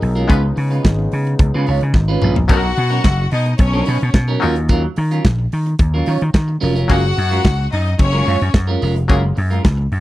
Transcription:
Already playing: F#3 G#3 C#4 D#4 F#4 G#4 A#4
0.02 B1, muted clean electric guitar stroke, open hi-hat
0.15 G#3 C#4 F4 A#4, closed hi-hat
0.28 C#2 C#3 G#3 B3 C#4 F4 B4, kick, closed hi-hat
0.43 muted clean electric guitar stroke
0.56 C#3, muted clean electric guitar stroke, open hi-hat
0.71 G#3 C#4 F4 B4, closed hi-hat
0.83 G#1, muted clean electric guitar stroke, kick, snare, closed hi-hat
0.99 muted clean electric guitar stroke
1.12 C#3, open hi-hat
1.27 muted clean electric guitar stroke, closed hi-hat
1.39 C#2, muted clean electric guitar stroke, kick, closed hi-hat
1.54 C#3 G#3 C#4 F4 B4
1.67 C#2 G#3 C#4 F4 C#5, open hi-hat
1.81 C#3, muted clean electric guitar stroke, closed hi-hat
1.94 G#1, muted clean electric guitar stroke, kick, snare
2.08 G#3 C#4 F4 B4
2.21 A#1 G#3 C#4 F4 B4, mid tom
2.36 muted clean electric guitar stroke, floor tom
2.48 B1 F#3 B3 C#4 D#4 F#4 A4 A#4 F#5, kick, closed hi-hat
2.57 A#4
2.63 muted clean electric guitar stroke
2.77 B2, muted clean electric guitar stroke, open hi-hat
2.90 F#3 C#4 D#4 A#4, closed hi-hat
3.03 F#1, muted clean electric guitar stroke, kick, snare, closed hi-hat
3.18 muted clean electric guitar stroke
3.31 B2 D#4 D#5, open hi-hat
3.46 muted clean electric guitar stroke, closed hi-hat
3.58 B1 C#4 C#5, muted clean electric guitar stroke, kick, closed hi-hat
3.73 F#3 C#4 D#4 A#4
3.86 B2 F#3 C#4 D#4 B4, open hi-hat
4.00 B2, muted clean electric guitar stroke, closed hi-hat
4.14 B2, muted clean electric guitar stroke, kick, snare, closed hi-hat
4.28 F#3 C#4 D#4 A#4
4.40 D#2 F#3 C#4 D#4 F4 A#4, open hi-hat
4.56 muted clean electric guitar stroke, closed hi-hat
4.69 F#3 C#4 F4 A#4, kick, closed hi-hat
4.83 muted clean electric guitar stroke
4.96 D#3, muted clean electric guitar stroke, open hi-hat
5.11 F#3 C#4 F4 A#4, closed hi-hat
5.25 A#1, muted clean electric guitar stroke, kick, snare, closed hi-hat
5.39 muted clean electric guitar stroke
5.52 D#3, open hi-hat
5.66 muted clean electric guitar stroke, closed hi-hat
5.79 D#2, muted clean electric guitar stroke, kick, closed hi-hat
5.94 F#3 C#4 F4 A#4
6.06 D#3 F#3 C#4 F4 C#5, open hi-hat
6.21 D#3, muted clean electric guitar stroke, closed hi-hat
6.34 D#3, muted clean electric guitar stroke, kick, snare, closed hi-hat
6.48 muted clean electric guitar stroke
6.61 F1 F#3 C#4 F4 A#4, open hi-hat
6.75 F#3 C#4 F4 A#4, closed hi-hat
6.88 F#1 F#3 G#3 A#3 C#4 F4 F#4 G#4 A#4 F#5, kick, closed hi-hat
7.03 muted clean electric guitar stroke
7.15 F#2, muted clean electric guitar stroke, open hi-hat
7.31 G#3 C#4 F4 A#4, closed hi-hat
7.43 C#2, muted clean electric guitar stroke, kick, snare, closed hi-hat
7.57 muted clean electric guitar stroke
7.72 F#2 D#4 D#5, open hi-hat
7.85 muted clean electric guitar stroke, closed hi-hat
7.98 F#1 C#4 C#5, muted clean electric guitar stroke, kick, closed hi-hat
8.13 G#3 C#4 F4 A#4
8.25 F#2 G#3 C#4 F4 C#5, open hi-hat
8.40 F#2, muted clean electric guitar stroke, closed hi-hat
8.54 F#2, muted clean electric guitar stroke, kick, snare, closed hi-hat
8.67 G#3 C#4 F4 A#4
8.82 F1 G#3 C#4 F4 A#4, open hi-hat
8.96 muted clean electric guitar stroke, closed hi-hat
9.08 F#1 F#3 G#3 A#3 C#4 F4 G#4 A#4, kick, closed hi-hat
9.23 muted clean electric guitar stroke
9.36 F#2, muted clean electric guitar stroke, open hi-hat
9.50 G#3 C#4 F4 A#4, closed hi-hat
9.63 C#2, muted clean electric guitar stroke, kick, snare, closed hi-hat
9.77 muted clean electric guitar stroke
9.92 F#2, open hi-hat

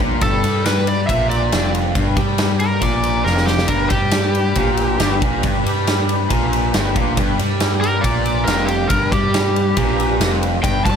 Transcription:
Already playing: D4 G4 B4
0.00 A#1 A#2
0.21 G1 G2 G4 A4 B4, kick, ride
0.26 D4
0.43 G2 G3, ride
0.65 B4, snare, ride
0.87 D5, ride
1.07 A#1 A#2 E5, kick, ride
1.30 D5, ride
1.52 F1 F2, snare, ride
1.75 ride
1.95 G1 G2, kick, ride
2.17 G2 G3, kick, ride
2.38 snare, ride
2.60 A#4, ride
2.81 A#1 A#2 D5, kick, ride
3.03 ride
3.24 F1 F2 A#4, snare
3.37 snare
3.46 G4, snare
3.58 snare
3.68 G1 G2 G4 A#4 B4, kick, ride
3.72 D4
3.89 G2 G3 G4, kick, ride
4.11 snare, ride
4.35 ride
4.55 A#1 A#2, kick, ride
4.77 ride
4.98 G1 G2, snare, ride
5.20 A#1 A#2, kick, ride
5.42 G1 G2, kick, ride
5.63 G2 G3, ride
5.87 snare, ride
6.09 ride
6.29 A#1 A#2, kick, ride
6.53 ride
6.73 G1 G2, snare, ride
6.95 A#1 A#2, kick, ride
7.16 G1 G2 D4 G4 B4, kick, ride
7.38 G2 G3, ride
7.60 snare, ride
7.81 A#4, ride
8.01 A#1 A#2 D5, kick, ride
8.25 ride
8.45 F1 F2 A#4, snare, ride
8.65 G4, ride
8.89 G1 G2 A#4, kick, ride
9.12 G2 G3 G4, kick, ride
9.34 snare, ride
9.56 ride
9.77 A#1 A#2, kick, ride
10.00 ride
10.19 F1 F2, snare, ride
10.43 ride
10.63 G1 G2 D4 G4 B4 G5, kick, ride
10.85 G2 G3 A5, kick, ride

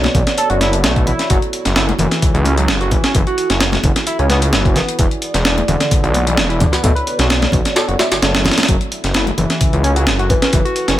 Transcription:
Already playing: B3 F#4 A4 C#5 D5
0.04 snare, closed hi-hat, high conga
0.15 B1, kick, closed hi-hat, low conga
0.27 snare, closed hi-hat
0.38 A4, closed hi-hat
0.50 F#1 F#4, closed hi-hat
0.61 E4, snare, closed hi-hat, high conga
0.73 closed hi-hat
0.84 B1 A3, snare, closed hi-hat
0.96 kick, closed hi-hat
1.07 E4, closed hi-hat, low conga
1.19 snare, closed hi-hat
1.29 F#1 F#3 E4, kick, closed hi-hat
1.42 closed hi-hat
1.53 closed hi-hat
1.65 F#1, snare, closed hi-hat
1.76 E4, snare, closed hi-hat
1.89 closed hi-hat, high conga
1.99 F#1 E3, closed hi-hat, low conga
2.11 snare, closed hi-hat
2.22 C#2, kick, closed hi-hat
2.34 C#2, closed hi-hat
2.45 C#4, closed hi-hat, high conga
2.58 F#3, closed hi-hat
2.68 F#1, snare, closed hi-hat
2.81 F#4, closed hi-hat
2.91 E3, kick, closed hi-hat, low conga
3.04 C#4, snare, closed hi-hat
3.15 F#1 E3, kick, closed hi-hat
3.27 F#4, closed hi-hat
3.38 closed hi-hat
3.50 F#1 C#4, snare, closed hi-hat
3.60 snare, closed hi-hat
3.72 snare, closed hi-hat, high conga
3.83 F#1, kick, closed hi-hat, low conga
3.96 snare, closed hi-hat
4.07 E4, closed hi-hat
4.19 C#2 C#4, closed hi-hat
4.30 B3, snare, closed hi-hat, high conga
4.42 closed hi-hat
4.53 F#1 E3, snare, closed hi-hat
4.65 kick, closed hi-hat
4.76 B3, snare, closed hi-hat, low conga
4.88 closed hi-hat
4.98 E1 E3 G#4 D5, kick, closed hi-hat
5.11 closed hi-hat
5.22 closed hi-hat
5.34 E1, snare, closed hi-hat
5.45 D4, snare, closed hi-hat
5.58 closed hi-hat, high conga
5.68 E1 D3, closed hi-hat, low conga
5.80 snare, closed hi-hat
5.91 B1, kick, closed hi-hat
6.03 B1, closed hi-hat
6.14 B3, closed hi-hat, high conga
6.26 E3, closed hi-hat
6.37 E1, snare, closed hi-hat
6.49 E4, closed hi-hat
6.60 D3, kick, closed hi-hat, low conga
6.72 B3, snare, closed hi-hat
6.83 B1 A3 B3 F#4 A4 C#5 D5, kick, closed hi-hat
6.95 B4, closed hi-hat
7.07 closed hi-hat
7.19 B1 F#4, snare, closed hi-hat
7.30 snare, closed hi-hat
7.42 snare, closed hi-hat, high conga
7.52 B1, kick, closed hi-hat, low conga
7.65 snare, closed hi-hat
7.75 A4, snare, closed hi-hat
7.88 F#1 F#4, closed hi-hat
7.99 E4, snare, closed hi-hat, high conga
8.11 F#1, snare, closed hi-hat
8.22 F#1 A3, snare, closed hi-hat
8.35 snare, closed hi-hat
8.45 E4, snare, closed hi-hat, low conga
8.51 snare, closed hi-hat
8.58 snare, closed hi-hat, high conga
8.63 snare, closed hi-hat
8.68 F#1 F#3 E4 A4, kick, closed hi-hat
8.81 closed hi-hat
8.92 closed hi-hat
9.04 F#1, snare, closed hi-hat
9.14 E4, snare, closed hi-hat
9.27 closed hi-hat, high conga
9.38 F#1 E3, closed hi-hat, low conga
9.50 snare, closed hi-hat
9.61 C#2, kick, closed hi-hat
9.73 C#2, closed hi-hat
9.84 C#4, closed hi-hat, high conga
9.96 F#3, closed hi-hat
10.07 F#1, snare, closed hi-hat
10.19 F#4, closed hi-hat
10.30 E3 B4, kick, closed hi-hat, low conga
10.42 C#4 B4, snare, closed hi-hat
10.53 F#1 E3, kick, closed hi-hat
10.65 F#4, closed hi-hat
10.76 closed hi-hat
10.88 F#1 C#4, snare, closed hi-hat

